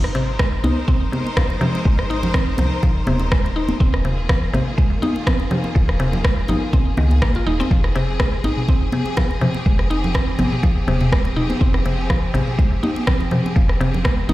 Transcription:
Already playing: G#1 G#3 D#4 A#4 C5
0.04 cross-stick
0.15 C3, muted conga
0.39 G#3, kick, cross-stick, muted conga, high conga
0.64 C2 D#4, muted conga, high conga
0.88 C4, kick, muted conga
1.12 C3, high conga
1.27 muted conga
1.36 F3, kick, cross-stick, high conga, low conga
1.50 muted conga
1.61 C3, low conga
1.75 muted conga
1.85 G#1 G#3, kick
1.99 cross-stick
2.10 D#4, muted conga
2.23 low conga
2.34 C4, kick, cross-stick, muted conga, high conga
2.58 C2 C3, muted conga, high conga, low conga
2.83 F3, kick, muted conga, high conga
3.07 D#1 C3, high conga
3.20 muted conga, high conga
3.32 G#3, kick, cross-stick
3.46 muted conga
3.56 D#4
3.69 muted conga, high conga
3.80 D#1 D#3 A#3 C4 F4 G#4, kick
3.94 cross-stick
4.05 C3, muted conga
4.29 F3, kick, cross-stick, muted conga, high conga
4.53 G#1 C3, muted conga, high conga
4.78 G#3, kick, muted conga
5.02 D#4, high conga
5.16 muted conga
5.27 C4, kick, cross-stick, high conga, low conga
5.40 muted conga
5.51 C3, low conga
5.64 muted conga
5.75 D#1 F3, kick
5.89 cross-stick
6.00 C3, muted conga
6.13 low conga
6.24 G#3, kick, cross-stick, muted conga, high conga
6.48 G#1 D#4, muted conga, high conga, low conga
6.73 C4, kick, muted conga, high conga
6.97 C#2 D#3, high conga
7.11 muted conga, high conga
7.22 G#1 A#3, kick, cross-stick
7.35 F4, muted conga
7.46 D#1 D#4
7.60 C4, muted conga, high conga
7.71 F1 F3 C4 G4, kick
7.84 cross-stick
7.95 C3, muted conga
8.20 G#3, kick, cross-stick, muted conga, high conga
8.44 G#1 D#4, muted conga, high conga
8.57 mid tom
8.68 C4, kick, muted conga
8.92 C3, high conga
9.06 muted conga
9.17 F3, kick, cross-stick, high conga, low conga
9.31 muted conga
9.41 C3, mid tom, low conga
9.55 muted conga
9.66 F1 G#3, kick
9.79 cross-stick
9.90 D#4, muted conga
10.04 low conga
10.14 C4, kick, cross-stick, muted conga, high conga
10.39 G#1 C3, muted conga, high conga, low conga
10.52 mid tom
10.63 F3, kick, muted conga, high conga
10.88 D#1 C3, high conga
11.00 mid tom, muted conga, high conga
11.12 G#3, kick, cross-stick
11.25 muted conga
11.36 D#4, mid tom
11.50 muted conga, high conga
11.61 F1 C4, kick
11.74 cross-stick
11.85 C3, muted conga
12.10 F3, kick, cross-stick, muted conga, high conga
12.34 G#1 C3, muted conga, high conga
12.48 mid tom
12.58 G#3, kick, muted conga
12.83 D#4, high conga
12.96 muted conga
13.07 C4, kick, cross-stick, high conga, low conga
13.20 muted conga
13.31 C3, mid tom, low conga
13.46 muted conga
13.56 F1 F3, kick
13.69 cross-stick
13.80 C3, muted conga
13.94 low conga
14.05 G#3, kick, cross-stick, muted conga, high conga
14.29 G#1 D#4, muted conga, high conga, low conga

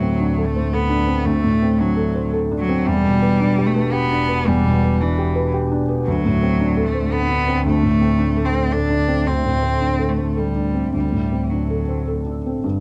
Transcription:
Already playing: D2 A2 F#3 A3 D4 A4
0.02 C4
0.20 D4
0.38 A4
0.46 A3
0.56 C5
0.73 B3 A4
0.89 D4
1.07 C4
1.26 D2 A3
1.44 A2
1.62 C4
1.80 F#3 D4
1.96 A4
2.15 C5
2.33 A4
2.51 D4
2.59 F#3
2.69 C4
2.86 E1 E2 G3 B3 D4 B4
3.04 B2
3.22 B3
3.40 D4
3.58 G4
3.66 A3
3.76 B4
3.93 B3 G4
4.11 D4
4.29 B3
4.47 E2 G3
4.65 B2
4.83 B3
5.01 E3 D4
5.19 G4
5.36 B4
5.54 G4
5.72 D4
5.89 B3
6.06 D2 F#3 A3 D4 A4
6.25 A2
6.42 C4
6.60 D4
6.77 A4
6.86 A3
6.95 C5
7.12 B3 A4
7.29 D4
7.48 C4
7.65 D2 A3
7.83 A2
8.00 C4
8.18 D4
8.37 A4
8.45 C4
8.54 C5
8.72 D4 A4
8.90 D4
9.08 C4
9.26 D2 C4
9.45 A2
9.63 C4
9.81 D4
9.99 A4
10.09 A3
10.18 C5
10.37 G3 A4
10.56 D4
10.74 C4
10.93 D2 G3 C4 D4 A4
11.12 A2
11.32 C4
11.50 F#3 D4
11.70 A4
11.88 C5
12.08 A4
12.26 D4
12.46 C4
12.64 G1 G2 B3 D4 G4

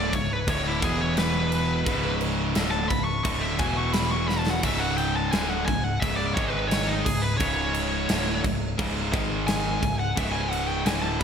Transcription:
Already playing: D1 D2 A2 D3 D5
0.13 C#1 C#2 G#2 C#5, kick, crash
0.33 B4
0.47 D1 D2 A2 D3 C#5, kick, crash
0.67 E4
0.82 E1 E2 B2 E3 G#4, kick, crash
1.01 C#5
1.17 B4, snare, crash
1.52 crash
1.86 C#1 C#2 G#2 C#3, kick, crash
2.21 crash
2.55 D1 D2 A2 D3, snare, crash
2.71 A5
2.88 C#1 C#2 G#2 B5, kick, crash
3.04 C#6
3.24 D1 D2 A2 D3 C#6, kick, crash
3.41 E5
3.59 E1 E2 B2 E3 G#5, kick, crash
3.77 C#6
3.93 B5, snare, crash
4.11 C#6
4.28 B5, snare
4.39 A5
4.47 F#5, snare
4.63 C#1 C#2 G#2 C#3 E5, kick, crash
4.80 F#5
4.97 G5, crash
5.16 A5
5.32 D1 D2 A2 D3 G#5, snare, crash
5.50 F#5
5.66 C#1 C#2 G#2 G#5, kick, crash
5.84 F#5
6.00 C#1 C#2 G#2 C#3 E5, kick, crash
6.17 D5
6.33 G#1 G#2 D#3 G#3 C#5, kick, crash
6.50 B4
6.68 C#5, snare, crash
6.87 D#4
7.05 C#1 C#2 G#2 G#4, kick, crash
7.22 B4
7.38 C#1 C#2 G#2 C#3 C#5, kick, crash
7.74 crash
8.09 D1 D2 A2 D3, snare, crash
8.44 C#1 C#2 G#2, kick, crash
8.78 C#1 C#2 G#2 C#3, kick, crash
9.13 G#1 G#2 D#3 G#3, kick, crash
9.47 G#5, snare, crash
9.82 C#1 C#2 G#2, kick, crash
9.99 F#5
10.16 C#1 C#2 G#2 C#3 E5, kick, crash
10.32 G#5
10.51 F#5, crash
10.68 G5
10.86 D1 D2 A2 D3 G#5, snare, crash
11.03 A5
11.19 C#2 G#2 B5

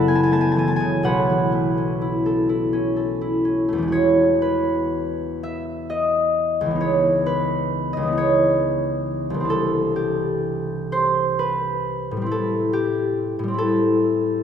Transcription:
Already playing: F#1 F#2 C#3 E3 F#3 A3 E4 F#4 G#4 A4 B4 C#5 E5 F#5 A5
0.08 B3 G#5
0.15 A5
0.23 G#5
0.31 A3 A5
0.41 G#5
0.52 A5
0.56 E3 G#5
0.68 A5
0.76 C#3 G#5
1.03 B1 B2 B4 C#5 F#5
1.30 E3
1.52 A3
1.78 C#4
2.01 E4
2.26 A4
2.49 E4
2.73 C#4
2.96 A4
3.21 E4
3.45 C#4
3.68 A3
3.73 E2
3.78 E3
3.83 G#3
3.88 F#4
3.92 C#5
4.42 B4
5.43 E5
5.90 D#5
6.61 C#2
6.66 E3
6.71 B3
6.75 D#4
6.81 C#5
7.26 B4
7.93 C#2 D#5
8.03 E3
8.07 B3
8.12 D#4
8.17 C#5
9.30 C2
9.34 E3
9.40 C4
9.45 D4
9.50 A4
9.96 G4
10.92 C5
11.39 B4
12.11 A2
12.17 G3
12.22 C4
12.26 E4
12.31 A4
12.73 G4
13.39 A2
13.43 G3
13.48 C4
13.54 E4
13.58 A4

